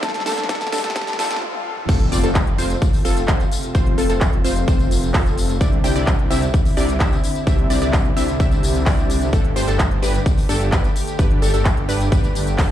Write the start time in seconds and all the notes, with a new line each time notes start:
Already playing: G3 A3 D4 A4 E5 C6, riser
0.00 A1 G2 G3 A3 D4 G4 A4, kick, snare, closed hi-hat, tambourine
0.09 snare
0.14 A4, snare, closed hi-hat, tambourine
0.20 snare
0.25 A1 G2 G3 A3 D4 G4 A4, snare, open hi-hat, tambourine
0.32 snare
0.38 A4, snare, closed hi-hat, tambourine
0.43 snare
0.48 A1 G2 G3 A3 D4 G4 A4, kick, snare, closed hi-hat, tambourine
0.55 snare
0.61 A4, snare, closed hi-hat, tambourine
0.67 snare
0.71 A1 G2 G3 A3 D4 G4 A4, snare, open hi-hat, tambourine
0.78 snare
0.84 A4, snare, closed hi-hat, tambourine
0.90 snare
0.95 G2 G3 A3 D4 G4 A4, kick, snare, closed hi-hat, tambourine, swell
1.01 snare
1.07 A4, snare, closed hi-hat, tambourine
1.13 snare
1.18 A1 G2 G3 A3 D4 G4 A4, snare, open hi-hat, tambourine
1.25 snare
1.31 A4, snare, closed hi-hat, tambourine
1.36 snare
1.42 high tom
1.54 high tom
1.77 mid tom
1.89 F1 C3 A3 C4 F4 A4, kick, closed hi-hat, tambourine, crash, impact
2.00 closed hi-hat
2.12 F1 C4 F4 D5, open hi-hat, tambourine
2.23 F1 C4 F4 A4, closed hi-hat, tambourine
2.35 kick, clap, closed hi-hat, tambourine
2.47 closed hi-hat
2.58 F1 C4 F4 C5, open hi-hat, tambourine
2.70 closed hi-hat, tambourine
2.82 kick, closed hi-hat, tambourine
2.93 open hi-hat, tambourine
3.05 F1 C4 F4 A4, open hi-hat, tambourine
3.17 closed hi-hat, tambourine
3.28 F1 C4 F4 C5, kick, clap, closed hi-hat, tambourine
3.40 closed hi-hat, tambourine
3.52 open hi-hat, tambourine
3.63 closed hi-hat, tambourine
3.75 F1 C4 F4 C5, kick, closed hi-hat, tambourine
3.86 closed hi-hat
3.98 F1 C4 F4 A4, open hi-hat, tambourine
4.10 F1 C4 F4 A4, closed hi-hat, tambourine
4.21 kick, clap, closed hi-hat, tambourine
4.33 closed hi-hat
4.44 F1 C4 F4 C5, open hi-hat, tambourine
4.56 closed hi-hat, tambourine
4.68 F1 C4 F4 C5, kick, closed hi-hat, tambourine
4.79 closed hi-hat, tambourine
4.91 open hi-hat, tambourine
5.03 closed hi-hat, tambourine
5.14 F1 C4 F4 A4, kick, clap, open hi-hat, tambourine
5.26 closed hi-hat, tambourine
5.38 open hi-hat, tambourine
5.49 closed hi-hat, tambourine
5.61 C2 D3 C4 D4 E4 G4 D5, kick, closed hi-hat, tambourine
5.72 closed hi-hat
5.84 C2 C4 D4 E4 G4 G5, open hi-hat, tambourine
5.96 C2 C4 D4 E4 G4 D5, closed hi-hat, tambourine
6.07 kick, clap, closed hi-hat, tambourine
6.19 closed hi-hat
6.31 C2 C4 D4 E4 G4 E5, open hi-hat, tambourine
6.42 closed hi-hat, tambourine
6.54 kick, closed hi-hat, tambourine
6.65 open hi-hat, tambourine
6.77 C2 C4 D4 E4 G4 D5, open hi-hat, tambourine
6.89 closed hi-hat, tambourine
7.00 C2 C4 D4 E4 G4 E5, kick, clap, closed hi-hat, tambourine
7.12 closed hi-hat, tambourine
7.24 open hi-hat, tambourine
7.35 closed hi-hat, tambourine
7.47 C2 C4 D4 E4 G4 E5, kick, closed hi-hat, tambourine
7.59 closed hi-hat
7.70 C2 C4 D4 E4 G4 D5, open hi-hat, tambourine
7.82 C2 C4 D4 E4 G4 D5, closed hi-hat, tambourine
7.93 kick, clap, closed hi-hat, tambourine
8.05 closed hi-hat
8.17 C2 C4 D4 E4 G4 E5, open hi-hat, tambourine
8.28 closed hi-hat, tambourine
8.40 C2 C4 D4 E4 G4 E5, kick, closed hi-hat, tambourine
8.52 closed hi-hat, tambourine
8.63 open hi-hat, tambourine
8.75 closed hi-hat, tambourine
8.86 C2 C4 D4 E4 G4 D5, kick, clap, open hi-hat, tambourine
8.98 closed hi-hat, tambourine
9.10 open hi-hat, tambourine
9.21 closed hi-hat, tambourine
9.33 G1 A3 D4 G4 A4, kick, closed hi-hat, tambourine
9.45 closed hi-hat
9.56 G1 D4 G4 C5, open hi-hat, tambourine
9.68 G1 D4 G4 A4, closed hi-hat, tambourine
9.79 kick, clap, closed hi-hat, tambourine
9.91 closed hi-hat
10.03 G1 D4 G4 B4, open hi-hat, tambourine
10.14 closed hi-hat, tambourine
10.26 kick, closed hi-hat, tambourine
10.38 open hi-hat, tambourine
10.49 G1 D4 G4 A4, open hi-hat, tambourine
10.61 closed hi-hat, tambourine
10.72 G1 D4 G4 B4, kick, clap, closed hi-hat, tambourine
10.84 closed hi-hat, tambourine
10.96 open hi-hat, tambourine
11.07 closed hi-hat, tambourine
11.19 G1 D4 G4 B4, kick, closed hi-hat, tambourine
11.31 closed hi-hat
11.42 G1 D4 G4 A4, open hi-hat, tambourine
11.54 G1 D4 G4 A4, closed hi-hat, tambourine
11.65 kick, clap, closed hi-hat, tambourine
11.77 closed hi-hat
11.89 G1 D4 G4 B4, open hi-hat, tambourine
12.00 closed hi-hat, tambourine
12.12 G1 D4 G4 B4, kick, closed hi-hat, tambourine
12.24 closed hi-hat, tambourine
12.35 open hi-hat, tambourine
12.47 closed hi-hat, tambourine
12.58 G1 D4 G4 A4, kick, clap, open hi-hat, tambourine